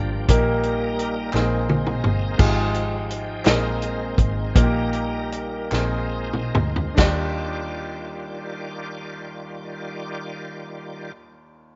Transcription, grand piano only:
0.00 0.24 G2 medium
0.00 0.14 D4 medium
0.00 0.15 F4 medium
0.00 0.15 G4 medium
0.00 0.15 A#4 medium
0.28 1.30 A#2 medium
0.28 1.20 A#3 medium
0.28 1.20 D#4 medium
0.28 1.20 G4 medium
0.28 1.20 A#4 loud
1.34 2.35 A#2 medium
1.34 2.25 C4 medium
1.34 2.25 D#4 medium
1.34 2.25 G#4 medium
1.34 2.26 A#4 medium
2.38 3.41 G#2 medium
2.38 3.31 D#4 medium
2.38 3.31 F4 medium
2.38 3.31 G4 medium
2.38 3.31 G#4 medium
3.44 4.51 A#2 medium
3.44 4.40 C4 medium
3.44 4.40 D#4 medium
3.44 4.41 G#4 medium
3.44 4.41 A#4 medium
4.55 5.68 A#2 medium
4.55 5.56 A#3 medium
4.55 5.56 D#4 medium
4.55 4.63 F4 medium
4.55 5.56 A#4 medium
4.62 5.59 G4 medium
5.71 6.94 A#2 medium
5.71 6.80 C4 medium
5.71 6.81 D#4 medium
5.71 6.81 G#4 medium
5.71 6.81 A#4 medium
6.95 11.13 D#2 medium
6.95 11.09 D4 medium
6.95 11.11 D#4 medium
6.99 11.14 F4 medium
6.99 11.16 G4 medium

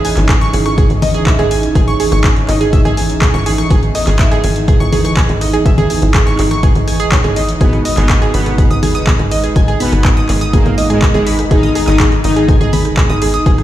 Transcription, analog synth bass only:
0.17 0.47 G#1 medium
0.53 0.83 G#1 loud
0.90 1.20 G#1 loud
1.39 1.69 G#1 loud
1.75 1.83 G#1 loud
2.12 2.42 G#1 medium
2.49 2.78 G#1 loud
2.85 3.15 G#1 loud
3.34 3.64 G#1 loud
3.71 3.79 G#1 loud
4.07 4.37 G#1 medium
4.44 4.74 G#1 loud
4.80 5.10 G#1 loud
5.29 5.59 G#1 loud
5.66 5.74 G#1 medium
6.02 6.32 G#1 medium
6.39 6.69 G#1 loud
6.75 7.05 G#1 loud
7.24 7.54 G#1 medium
7.61 7.69 G#1 loud
7.97 8.27 G#1 medium
8.34 8.64 G#1 loud
8.71 9.00 G#1 medium
9.19 9.49 G#1 loud
9.56 9.64 G#1 loud
9.92 10.22 G#1 medium
10.29 10.59 G#1 loud
10.66 10.96 G#1 loud
11.14 11.44 G#1 loud
11.51 11.59 G#1 loud
11.88 12.17 G#1 medium
12.24 12.54 G#1 loud
12.61 12.91 G#1 loud
13.09 13.39 G#1 loud
13.46 13.54 G#1 loud

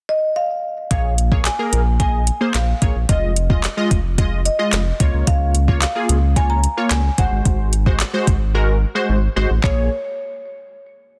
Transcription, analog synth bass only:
0.91 1.49 A#1 loud
1.73 2.30 A#1 loud
2.54 2.74 A#1 loud
2.82 2.91 A#1 medium
2.96 3.05 A#1 medium
3.09 3.67 F1 loud
3.91 4.49 F1 medium
4.73 4.92 F1 loud
5.00 5.10 C#2 medium
5.14 5.23 C#2 medium
5.27 5.85 C#2 loud
6.09 6.67 C#2 loud
6.91 7.10 C#2 medium
7.18 7.28 G#1 medium
7.32 7.41 G#1 medium
7.45 8.03 G#1 loud
8.27 8.85 G#1 loud
9.09 9.28 G#1 medium
9.36 9.46 G#1 medium
9.50 9.60 A1 medium
9.64 9.89 A#1 loud

